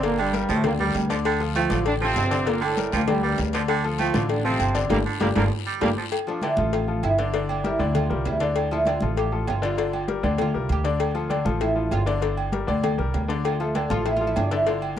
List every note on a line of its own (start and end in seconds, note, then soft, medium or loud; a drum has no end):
0.00 0.43 G1 medium
0.00 0.28 D3 medium
0.00 0.28 D4 loud
0.00 0.29 D5 medium
0.00 cowbell loud
0.00 high conga soft
0.00 low agogo medium
0.00 long guiro medium
0.06 0.19 A#2 medium
0.06 0.19 A#3 loud
0.18 0.50 G2 medium
0.18 0.34 D3 medium
0.18 0.50 G3 loud
0.18 high conga soft
0.18 low agogo loud
0.33 0.59 G3 medium
0.33 0.59 G4 medium
0.33 0.59 A#4 medium
0.33 cowbell medium
0.33 high conga medium
0.33 short guiro medium
0.49 0.92 D2 loud
0.49 0.65 A2 medium
0.49 0.65 F3 medium
0.49 0.65 A3 loud
0.49 high conga soft
0.49 low agogo medium
0.49 short guiro medium
0.64 0.72 A#2 medium
0.64 0.77 D3 medium
0.64 0.73 A#3 loud
0.64 0.77 D4 medium
0.64 0.77 D5 medium
0.64 cowbell loud
0.64 high conga soft
0.64 low conga medium
0.64 low agogo loud
0.64 long guiro medium
0.79 1.09 G2 medium
0.79 0.96 G3 medium
0.79 1.05 G3 medium
0.79 1.08 G3 medium
0.79 1.05 G4 medium
0.79 1.05 A#4 medium
0.79 high conga soft
0.79 low conga medium
0.94 1.65 D2 medium
0.94 cowbell medium
0.94 high conga soft
0.94 low timbale medium
0.94 low agogo medium
0.94 short guiro medium
1.09 1.35 D3 medium
1.09 1.17 F3 medium
1.09 1.35 D4 medium
1.09 1.35 D5 loud
1.09 cowbell medium
1.09 high conga soft
1.09 short guiro medium
1.25 1.41 D3 loud
1.25 cowbell loud
1.25 high conga soft
1.25 low agogo loud
1.25 long guiro medium
1.40 1.65 F3 medium
1.40 1.65 F4 medium
1.40 1.65 A4 medium
1.40 high conga soft
1.40 low agogo medium
1.55 1.84 F3 loud
1.55 1.79 A3 medium
1.55 1.84 F4 medium
1.55 cowbell medium
1.55 high conga medium
1.55 low agogo loud
1.55 short guiro medium
1.70 2.13 A1 loud
1.70 1.95 D3 medium
1.70 1.95 D4 medium
1.70 1.95 D5 loud
1.70 high conga medium
1.70 short guiro medium
1.85 1.94 D3 medium
1.85 1.93 D4 loud
1.85 cowbell loud
1.85 high conga soft
1.85 low agogo medium
1.85 long guiro medium
2.00 2.45 C3 medium
2.00 2.26 F3 medium
2.00 2.36 F3 medium
2.00 2.45 C4 loud
2.00 2.26 F4 medium
2.00 2.26 A4 medium
2.00 high conga soft
2.16 2.87 G1 medium
2.16 cowbell medium
2.16 high conga soft
2.16 low timbale medium
2.16 low agogo loud
2.16 short guiro medium
2.31 2.44 D3 medium
2.31 2.44 D4 medium
2.31 2.44 D5 loud
2.31 cowbell medium
2.31 short guiro medium
2.46 2.63 A#2 medium
2.46 2.71 D3 medium
2.46 2.63 A#3 loud
2.46 2.71 D4 medium
2.46 2.72 D5 medium
2.46 cowbell loud
2.46 high conga soft
2.46 low agogo medium
2.46 long guiro medium
2.61 2.92 A2 medium
2.61 2.77 D3 medium
2.61 2.91 A3 loud
2.61 high conga soft
2.61 low agogo loud
2.77 3.02 G3 medium
2.77 3.02 G4 medium
2.77 3.02 A#4 medium
2.77 cowbell medium
2.77 high conga medium
2.77 short guiro medium
2.92 3.35 D2 medium
2.92 3.01 A#2 medium
2.92 3.08 F3 medium
2.92 3.01 A#3 medium
2.92 high conga soft
2.92 low agogo medium
2.92 short guiro medium
3.08 3.24 G2 medium
3.08 3.20 D3 medium
3.08 3.23 G3 loud
3.08 3.20 D4 medium
3.08 3.21 D5 medium
3.08 cowbell loud
3.08 high conga soft
3.08 low conga loud
3.08 low agogo loud
3.08 long guiro medium
3.23 3.52 G2 medium
3.23 3.48 G3 medium
3.23 3.39 G3 medium
3.23 3.52 G3 medium
3.23 3.48 G4 medium
3.23 3.48 A#4 medium
3.38 4.09 D2 medium
3.38 cowbell medium
3.38 low timbale medium
3.38 low agogo medium
3.38 short guiro medium
3.53 3.79 D3 loud
3.53 3.62 F3 medium
3.53 3.79 D4 medium
3.53 3.79 D5 medium
3.53 cowbell medium
3.53 high conga soft
3.53 short guiro medium
3.68 3.84 D3 loud
3.68 cowbell loud
3.68 high conga soft
3.68 low agogo loud
3.68 long guiro medium
3.84 4.09 F3 medium
3.84 4.09 F4 medium
3.84 4.09 A4 medium
3.84 high conga soft
3.84 low agogo medium
3.98 4.27 F3 loud
3.98 4.23 A3 medium
3.98 4.28 F4 medium
3.98 cowbell medium
3.98 high conga medium
3.98 low agogo loud
3.98 short guiro medium
4.14 4.57 A1 loud
4.14 4.39 D3 loud
4.14 4.39 D4 medium
4.14 4.39 D5 medium
4.14 high conga medium
4.14 short guiro medium
4.29 4.46 D3 medium
4.29 4.45 D4 loud
4.29 cowbell loud
4.29 high conga soft
4.29 low agogo medium
4.29 long guiro medium
4.44 4.84 C3 medium
4.44 4.69 F3 medium
4.44 4.79 F3 medium
4.44 4.84 C4 loud
4.44 4.69 F4 medium
4.44 4.70 A4 medium
4.44 high conga soft
4.59 4.88 G1 medium
4.59 cowbell medium
4.59 high conga soft
4.59 low agogo loud
4.59 short guiro medium
4.75 4.87 D3 loud
4.75 4.87 D4 loud
4.75 4.88 D5 medium
4.75 cowbell medium
4.75 short guiro medium
4.87 5.01 G1 loud
4.87 4.98 D3 loud
4.87 4.98 G3 loud
4.87 5.00 A#3 loud
4.87 4.98 A#3 loud
4.87 4.91 C4 medium
4.87 5.00 D4 loud
4.87 5.00 G4 loud
4.87 cowbell loud
4.87 high conga loud
4.87 high timbale loud
4.87 long guiro loud
5.06 5.22 D3 medium
5.20 5.32 G1 medium
5.20 5.28 D3 loud
5.20 5.28 G3 loud
5.20 5.30 A#3 loud
5.20 5.29 A#3 loud
5.20 5.31 D4 loud
5.20 5.30 G4 loud
5.20 cowbell loud
5.20 high conga loud
5.20 high timbale medium
5.20 long guiro medium
5.35 5.47 G1 loud
5.35 5.43 D3 medium
5.35 5.52 F3 medium
5.35 5.43 G3 medium
5.35 5.46 A#3 medium
5.35 5.43 A#3 loud
5.35 5.46 D4 loud
5.35 5.46 G4 loud
5.35 cowbell loud
5.35 high conga loud
5.35 high timbale loud
5.35 long guiro loud
5.66 5.82 G3 medium
5.81 5.93 G1 medium
5.81 5.89 D3 medium
5.81 5.89 G3 loud
5.81 5.89 A#3 loud
5.81 5.91 A#3 loud
5.81 5.91 D4 loud
5.81 5.91 G4 loud
5.81 cowbell loud
5.81 high conga loud
5.81 high timbale loud
5.81 long guiro loud
5.98 6.05 F3 medium
6.12 cowbell loud
6.12 high conga soft
6.12 low agogo loud
6.27 6.40 F3 medium
6.27 6.43 D4 medium
6.27 6.40 F4 medium
6.27 6.40 A4 medium
6.27 high conga soft
6.27 low agogo medium
6.42 6.55 D3 medium
6.42 6.56 D4 medium
6.42 6.72 E4 medium
6.42 6.56 D5 medium
6.42 cowbell medium
6.42 high conga medium
6.42 low agogo loud
6.57 7.00 A1 loud
6.57 6.83 F3 medium
6.57 6.83 F4 medium
6.57 6.83 A4 medium
6.57 high conga loud
6.73 7.02 F4 medium
6.73 cowbell loud
6.73 low agogo medium
6.88 7.13 F3 medium
6.88 7.13 F4 medium
6.88 7.13 A4 medium
6.88 high conga soft
7.03 7.74 G1 medium
7.03 7.19 E4 medium
7.03 cowbell medium
7.03 high conga soft
7.03 low agogo loud
7.18 7.31 D3 medium
7.18 7.31 D4 medium
7.18 7.49 D4 medium
7.18 7.32 D5 medium
7.18 cowbell medium
7.34 7.59 D3 medium
7.34 7.59 D4 medium
7.34 7.59 D5 medium
7.34 cowbell loud
7.34 high conga soft
7.34 low agogo medium
7.49 7.65 D4 medium
7.49 high conga soft
7.49 low agogo loud
7.64 7.77 G3 medium
7.64 7.93 E4 medium
7.64 7.77 G4 medium
7.64 7.77 A#4 medium
7.64 cowbell medium
7.64 high conga medium
7.79 8.08 D2 loud
7.79 8.05 D3 medium
7.79 8.05 D4 loud
7.79 8.05 D5 medium
7.79 high conga soft
7.79 low agogo medium
7.95 8.24 F4 medium
7.95 cowbell loud
7.95 high conga soft
7.95 low conga medium
7.95 low agogo loud
8.09 8.25 C2 medium
8.09 8.35 G3 medium
8.09 8.35 G4 medium
8.09 8.35 A#4 medium
8.09 high conga soft
8.09 low conga medium
8.25 8.96 D2 medium
8.25 8.41 E4 medium
8.25 cowbell medium
8.25 high conga soft
8.25 low timbale medium
8.25 low agogo medium
8.40 8.66 D3 medium
8.40 8.66 D4 medium
8.40 8.84 D4 medium
8.40 8.66 D5 medium
8.40 cowbell medium
8.40 high conga soft
8.55 cowbell loud
8.55 high conga soft
8.55 low agogo loud
8.71 8.84 F3 medium
8.71 8.87 E4 medium
8.71 8.84 F4 medium
8.71 8.84 A4 medium
8.71 high conga soft
8.71 low agogo medium
8.85 8.99 D3 medium
8.85 8.99 D4 medium
8.85 9.16 F4 medium
8.85 8.99 D5 medium
8.85 cowbell medium
8.85 high conga medium
8.85 low agogo loud
9.00 9.44 A1 loud
9.00 9.27 F3 medium
9.00 9.27 F4 medium
9.00 9.27 A4 medium
9.00 high conga medium
9.16 9.46 G4 medium
9.16 cowbell loud
9.16 high conga soft
9.16 low agogo medium
9.32 9.57 F3 medium
9.32 9.57 F4 medium
9.32 9.57 A4 medium
9.32 high conga soft
9.47 10.19 G1 medium
9.47 9.63 F4 medium
9.47 cowbell medium
9.47 high conga soft
9.47 low timbale medium
9.47 low agogo loud
9.62 9.75 D3 loud
9.62 9.75 D4 loud
9.62 10.07 F4 medium
9.62 9.75 D5 medium
9.62 cowbell medium
9.77 10.03 D3 medium
9.77 10.03 D4 medium
9.77 10.03 D5 medium
9.77 cowbell loud
9.77 high conga soft
9.77 low agogo medium
9.93 high conga soft
9.93 low agogo loud
10.08 10.21 G3 medium
10.08 10.21 G4 medium
10.08 10.21 A#4 medium
10.08 cowbell medium
10.08 high conga medium
10.23 10.52 D2 loud
10.23 10.49 D3 medium
10.23 10.49 D4 medium
10.23 10.49 D5 medium
10.23 high conga soft
10.23 low agogo medium
10.38 10.69 F4 medium
10.38 cowbell loud
10.38 high conga soft
10.38 low conga medium
10.38 low agogo loud
10.54 10.69 C2 medium
10.54 10.79 G3 medium
10.54 10.79 G4 medium
10.54 10.80 A#4 medium
10.54 high conga soft
10.69 11.40 D2 medium
10.69 10.86 G4 loud
10.69 cowbell medium
10.69 high conga soft
10.69 low agogo medium
10.84 11.10 D3 medium
10.84 11.10 D4 loud
10.84 11.10 D5 medium
10.84 cowbell medium
10.84 high conga soft
11.00 cowbell loud
11.00 high conga soft
11.00 low agogo loud
11.14 11.27 F3 medium
11.14 11.28 F4 medium
11.14 11.28 A4 medium
11.14 high conga soft
11.14 low agogo medium
11.30 11.43 D3 medium
11.30 11.43 D4 medium
11.30 11.43 D5 medium
11.30 cowbell medium
11.30 high conga medium
11.30 low agogo loud
11.45 11.88 A1 loud
11.45 11.70 F3 medium
11.45 11.71 F4 medium
11.45 11.71 A4 medium
11.45 high conga medium
11.61 11.90 E4 medium
11.61 cowbell loud
11.61 high conga soft
11.61 low agogo medium
11.75 12.01 F3 medium
11.75 12.01 F4 medium
11.75 12.01 A4 medium
11.75 high conga soft
11.91 12.62 G1 medium
11.91 12.02 F4 loud
11.91 cowbell medium
11.91 high conga soft
11.91 low timbale medium
11.91 low agogo loud
12.06 12.19 D3 loud
12.06 12.19 D4 loud
12.06 12.19 D5 loud
12.06 cowbell medium
12.21 12.47 D3 medium
12.21 12.47 D4 medium
12.21 12.47 D5 medium
12.21 cowbell loud
12.21 high conga soft
12.21 low agogo medium
12.37 high conga soft
12.37 low agogo loud
12.52 12.65 G3 medium
12.52 12.65 G4 medium
12.52 12.65 A#4 medium
12.52 cowbell medium
12.52 high conga medium
12.67 12.97 D2 loud
12.67 12.93 D3 medium
12.67 12.93 D4 medium
12.67 12.93 D5 medium
12.67 high conga soft
12.67 low agogo medium
12.83 cowbell loud
12.83 high conga soft
12.83 low conga loud
12.83 low agogo loud
12.98 13.13 C2 medium
12.98 13.23 G3 medium
12.98 13.23 G4 medium
12.98 13.24 A#4 medium
12.98 high conga soft
12.98 low conga medium
13.14 13.85 D2 medium
13.14 cowbell medium
13.14 low timbale medium
13.14 low agogo medium
13.28 13.54 D3 medium
13.28 13.54 D4 medium
13.28 13.54 D5 medium
13.28 cowbell medium
13.28 high conga soft
13.44 13.60 F4 medium
13.44 cowbell loud
13.44 high conga soft
13.44 low agogo loud
13.60 13.72 F3 medium
13.60 13.75 A3 medium
13.60 13.73 F4 medium
13.60 13.73 A4 medium
13.60 high conga soft
13.60 low agogo medium
13.75 13.88 D3 medium
13.75 13.88 D4 medium
13.75 13.91 D4 medium
13.75 13.88 D5 medium
13.75 cowbell medium
13.75 high conga medium
13.75 low agogo loud
13.90 14.33 A1 medium
13.90 14.15 F3 medium
13.90 14.15 F4 medium
13.90 14.06 F4 loud
13.90 14.15 A4 medium
13.90 high conga medium
14.06 14.16 E4 medium
14.06 cowbell loud
14.06 high conga soft
14.06 low agogo medium
14.17 14.46 F3 medium
14.17 14.26 F4 loud
14.17 high conga soft
14.21 14.46 F4 medium
14.21 14.46 A4 medium
14.27 14.37 E4 medium
14.35 14.99 G1 medium
14.35 14.52 D4 medium
14.35 cowbell medium
14.35 high conga soft
14.35 low timbale medium
14.35 low agogo loud
14.51 14.64 D3 medium
14.51 14.64 D4 medium
14.51 14.67 E4 medium
14.51 14.64 D5 medium
14.51 cowbell medium
14.66 14.92 D3 medium
14.66 14.92 D4 medium
14.66 14.76 F4 medium
14.66 14.92 D5 medium
14.66 cowbell loud
14.66 high conga soft
14.66 low agogo medium
14.81 high conga soft
14.81 low agogo loud